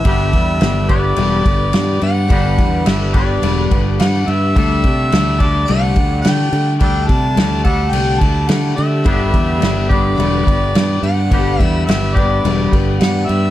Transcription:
Already playing: E5
0.03 G1 G2 D3 G3 B3 D4 G4 D5, kick, crash
0.33 E2 G3 B3 D4 G4, kick, crash
0.60 G1 G3 B3 D4 G4, snare, crash
0.86 B3 D4 G4, kick, crash
0.90 G2 D3 G3 D5
1.16 E1 G2 D3 G3 B3 D4 G4, crash
1.44 G1 G3 B3 D4 G4, kick, crash
1.71 G2 G3 B3 D4 G4, snare, crash
2.00 G2 B3 D4 G4 F#5, crash
2.04 G3
2.27 G1 G2 D3 G3 B3 D4 G4, kick, crash
2.32 F#5
2.57 E2 G3 B3 D4 G4, kick, crash
2.85 G1 G3 B3 D4 E5, snare, crash
2.90 G4
3.13 D3 G3 B3 D4 G4 D5, kick, crash
3.17 G2
3.42 E1 G2 D3 G3 B3 D4 G4, crash
3.71 G1 G3 B3 D4 G4, kick, crash
3.99 G2 G3 B3 D4 G4 F#5, snare, crash
4.28 G2 G3 B3 D4 G4 E5, crash
4.55 D2 D3 G3 A3 D4 G4 A4, kick, crash
4.84 C3 A3 D4 G4, kick, crash
5.10 D2 G3 A3 D4 G4, snare, crash
5.38 D3 G3 D4 G4 A4 D5, kick, crash
5.43 A3
5.66 C2 D3 G3 A3 D4 G4 F#5, crash
5.95 D2 A3 D4 G4, kick, crash
6.22 D3 G3 A3 G5, snare, crash
6.26 D4 G4
6.52 D3 A3 D4 G4, crash
6.80 D2 D3 G3 A3 D4 G4 A4 G5, kick, crash
7.07 C3 A3 D4 G4 A5, kick, crash
7.35 D2 G3 A3 D4 G4, snare, crash
7.63 A3 D4 G4 A4 F#5, kick, crash
7.68 D3 G3
7.91 C2 D3 G3 A3 D4 G4 G5, crash
8.20 D2 D4 G4 A5, kick, crash
8.24 A3
8.48 D3 G3 A3 D4 G4 F#5, snare, crash
8.76 D3 A3 D4 G4 E5, crash
9.04 G1 G2 D3 G3 B3 D4 G4 D5, kick, crash
9.30 E2 G3 B3 D4 G4, kick, crash
9.58 G1 G3 B3 D4 G4
9.62 snare, crash
9.88 G3 B3 D4 G4 D5, kick, crash
9.93 G2 D3
10.16 E1 G2 D3 G3 B3 D4 G4
10.20 crash
10.45 G1 G3 B3 D4 G4, kick, crash
10.75 G2 G3 B3 D4 G4, snare, crash
11.02 G2 G3 B3 D4 G4 F#5, crash
11.31 G1 G2 D3 G3 B3 D4 G4, kick, crash
11.59 E2 G3 B3 D4 G4 E5, kick, crash
11.86 G1 G3 B3 E5, snare, crash
11.90 D4 G4
12.15 G2 D3 D4 G4 D5, kick, crash
12.20 G3 B3
12.44 E1 G2 D3 G3 B3 D4 G4, crash
12.72 G1 B3 D4 G4, kick, crash
12.76 G3
12.99 G2 G3 B3 F#5, snare, crash
13.04 D4 G4
13.27 G2 G4 E5, crash
13.31 G3 B3 D4

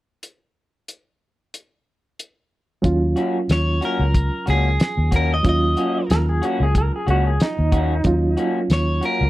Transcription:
0.23 closed hi-hat
0.88 closed hi-hat
1.54 closed hi-hat
2.19 closed hi-hat
2.82 D#2 F#3 C#4 F4, kick, closed hi-hat
3.16 A#3 C#4 F#4, closed hi-hat
3.49 D#2 C#5, snare, closed hi-hat
3.81 A#3 C#4 F#4 A#4, closed hi-hat
3.99 C#2
4.14 kick, closed hi-hat
4.46 C#2 A#3 C#4 F#4, closed hi-hat
4.50 G#4
4.80 snare, closed hi-hat
4.98 D#2
5.11 A#3 C#4 F#4, kick, closed hi-hat
5.16 A#4
5.34 D#5
5.43 D#2 F#3 C#4 F4, kick, closed hi-hat
5.49 D#5
5.77 A#3 C#4 F#4, closed hi-hat
6.10 D#2 A#4, snare, closed hi-hat
6.29 G#4
6.42 A#3 C#4 F#4, closed hi-hat
6.60 C#2 G#4
6.75 A#4, kick, closed hi-hat
6.96 G#4
7.07 C#2 A#3 C#4 F#4, closed hi-hat
7.27 G#4
7.40 D#4, snare, closed hi-hat
7.59 D#2
7.72 A#3 C#4 F#4, kick, closed hi-hat
8.04 D#2 F#3 C#4 F4, kick, closed hi-hat
8.37 A#3 C#4 F#4, closed hi-hat
8.70 D#2 C#5, snare, closed hi-hat
9.01 A#3 C#4 F#4, closed hi-hat
9.05 A#4
9.21 C#2

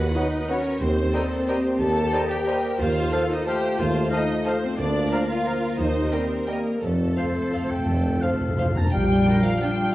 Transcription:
Already playing: F#4 B4 F#5
0.14 F#3 B3 D#4 F#4 B4 D#5 F#5 B5
0.48 F#3 B3 C#4 F#4 A#4 B4 C#5 F#5 B5
0.81 D#2 A#3 C4 G4 C5
1.14 G3 A4 A#4 C5 D#5 G5 A#5
1.48 G3 G4 A#4 C5 D#5 G5 A#5
1.79 D#2 A4 A5
2.12 G3 A#4 C5 D#5 G5 A#5
2.30 G4 G5
2.47 G3 A#4 C5 D#5 G5 A#5
2.78 D#2 F4 C5 F5
3.12 F3 A4 C5 F5 A5
3.30 D#4 D#5
3.46 F3 A3 G4 A4 C5 F5 G5 A5
3.79 D#2 F4 C5 F5
4.10 F3 D#4 A4 C5 D#5 F5 A5
4.44 F3 A4 C5 F5 A5
4.63 C4 C5
4.79 D2 A#3 D4 F4 D5
5.12 F3 A#4 F5 A#5
5.29 F4 F5
5.45 F3 A#4 F5 A#5
5.78 D#2 D#4 G4 C5 D#5
6.11 G3 C4 A#4 C5 D#5 G5 A#5
6.47 G3 A#3 A#4 D#5 G5 A#5
6.82 F1 F2 A3 C4 F4 A4
6.90 F2
6.99 F2
7.07 F2
7.14 F2 F3 C5 F5
7.23 F2
7.31 F2
7.40 F2
7.48 F2 C5
7.53 F2 F3 C5 F5
7.64 F2
7.71 F2 G5
7.79 F2
7.86 F1 F2
7.92 F2
7.99 F2
8.08 F2
8.17 F2
8.22 F2 F3 C5 F5
8.32 F2
8.40 F2
8.49 F2
8.57 F2 F3 C5 F5
8.65 F2
8.73 F2 A#5
8.77 F2 A#3 A5 A#5
8.92 A#1 G3 D4 F4 F5 G5
9.26 D4 F4 A#4
9.43 F3 F5
9.60 G3 D4 F4 G5

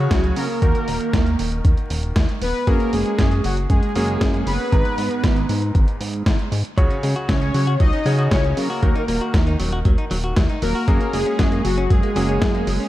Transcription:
Already playing: C#3 F#3 C#4 F#4 G#4 C#5
0.11 C#2, kick, snare, closed hi-hat
0.24 closed hi-hat
0.36 C#3 A#3 A#4, open hi-hat
0.62 D#2 D#3 A#3 D#4 F#4 A#4, kick, closed hi-hat
0.75 closed hi-hat
0.88 D#1, open hi-hat
1.01 closed hi-hat
1.13 D#2, kick, snare, closed hi-hat
1.26 closed hi-hat
1.39 D#1, open hi-hat
1.52 closed hi-hat
1.65 D#2, kick, closed hi-hat
1.77 closed hi-hat
1.90 D#1, open hi-hat
2.03 closed hi-hat
2.16 D#2, kick, snare, closed hi-hat
2.29 closed hi-hat
2.42 D#1 B3 B4, open hi-hat
2.67 F#2 A#3 C#4 F#4 G#4 A#4, kick, closed hi-hat
2.80 closed hi-hat
2.93 F#1 G#3 G#4, open hi-hat
3.06 closed hi-hat
3.18 F#2, kick, snare, closed hi-hat
3.31 closed hi-hat
3.44 F#1 F#3 F#4, open hi-hat
3.57 closed hi-hat
3.70 F#2 G#3 G#4, kick, closed hi-hat
3.83 closed hi-hat
3.95 F#1 A#3 C#4 F#4 G#4, open hi-hat
4.08 closed hi-hat
4.21 F#2, kick, snare, closed hi-hat
4.34 closed hi-hat
4.47 F#1 B3 B4, open hi-hat
4.72 G#1 G#2 B3 D#4 G#4 A#5, kick, closed hi-hat
4.85 closed hi-hat
4.98 G#2, open hi-hat
5.11 closed hi-hat
5.24 G#1, kick, snare, closed hi-hat
5.36 closed hi-hat
5.49 G#2, open hi-hat
5.62 closed hi-hat
5.75 G#1, kick, closed hi-hat
5.88 closed hi-hat
6.00 G#2, open hi-hat
6.13 closed hi-hat
6.26 G#1, kick, snare, closed hi-hat
6.39 closed hi-hat
6.52 G#2, open hi-hat
6.65 closed hi-hat
6.77 C#2 C#3 F#3 C#4 F#4 G#4 C#5, kick, closed hi-hat
6.90 C#4, closed hi-hat
7.03 C#3 G#3, open hi-hat
7.16 F#4, closed hi-hat
7.29 C#2 F#3 C#4 C#5, kick, snare, closed hi-hat
7.41 C#4, closed hi-hat
7.54 C#3 F#3, open hi-hat
7.67 F#4, closed hi-hat
7.80 C#2 F#3 D#4 D#5, kick, closed hi-hat
7.93 C#4, closed hi-hat
8.06 C#3 F#3 C#4 F#4 G#4 C#5, open hi-hat
8.19 F#4, closed hi-hat
8.31 C#2 F#3 C#4 C#5, kick, snare, closed hi-hat
8.44 C#4, closed hi-hat
8.57 C#3 F#3 A#3 A#4, open hi-hat
8.70 F#4
8.83 D#2 D#3 F#3 A#3 D#4 F#4 A#4, kick, closed hi-hat
8.96 D#4, closed hi-hat
9.08 D#1 A#3, open hi-hat
9.21 F#4, closed hi-hat
9.34 D#2 F#3, kick, snare, closed hi-hat
9.47 D#4, closed hi-hat
9.60 D#1 F#3, open hi-hat
9.72 F#4, closed hi-hat
9.85 D#2 F#3, kick, closed hi-hat
9.98 D#4, closed hi-hat
10.11 D#1 F#3, open hi-hat
10.24 F#4, closed hi-hat
10.36 D#2 F#3, kick, snare, closed hi-hat
10.49 D#4, closed hi-hat
10.62 D#1 F#3 A#3 A#4, open hi-hat
10.75 F#4
10.88 F#2 F#3 A#3 C#4 F#4 G#4, kick, closed hi-hat
11.01 A#3, closed hi-hat
11.13 F#1 G#3 G#4, open hi-hat
11.26 C#4, closed hi-hat
11.39 F#2 F#3, kick, snare, closed hi-hat
11.52 A#3, closed hi-hat
11.65 F#1 F#3 F#4, open hi-hat
11.77 C#4, closed hi-hat
11.90 F#2 F#3 G#3 G#4, kick, closed hi-hat
12.03 A#3, closed hi-hat
12.16 F#1 F#3 A#3 C#4 F#4 G#4, open hi-hat
12.29 C#4, closed hi-hat
12.42 F#2 F#3, kick, snare, closed hi-hat
12.54 A#3, closed hi-hat
12.67 F#1 F#3, open hi-hat
12.80 C#4

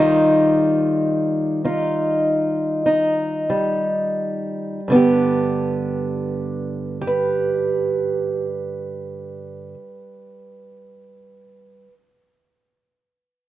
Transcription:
Already playing: D#3 G3 D#4 F4
1.65 D#4 F4
2.86 D#4
3.50 G3
4.88 G2 D3 B3
4.94 D4 G4
7.01 G4
7.07 B4

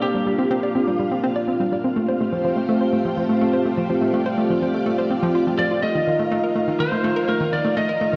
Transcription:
Already playing: A#3 D4 F5
0.02 C4 F4 G4
0.15 G3
0.27 G3
0.39 C4
0.51 C4
0.63 D5
0.75 C4
0.87 G3
0.99 G3
1.11 C4
1.24 C4
1.36 D5
1.48 C4
1.60 G3
1.72 G3
1.84 C4
1.96 A3 C4 F4 G4 C5
2.08 C5
2.21 A3
2.32 F3
2.45 F3
2.57 A3
2.69 A3
2.81 C5
2.93 A3
3.05 F3
3.17 F3
3.29 A3
3.41 A3
3.53 C5
3.66 A3
3.78 F3
3.90 F3 D5
4.02 A3
4.14 A3
4.26 C5
4.38 A3
4.50 F3
4.62 F3
4.74 A3
4.86 A3
4.98 C5
5.11 C4
5.23 F3
5.35 F4
5.47 F3
5.59 F3 D5
5.71 F4
5.82 A3 D#4 A#4 D#5
5.95 D#3
6.07 D#3
6.19 A3
6.31 A3
6.44 A#4
6.55 A3
6.68 D#3
6.80 D#3 C5
6.92 A3
7.04 A3
7.16 A#4
7.28 A3 A#4
7.40 D#3
7.53 D#3 D5
7.65 A3
7.77 A3 D#5
7.89 A#4
8.01 A3
8.13 D#3

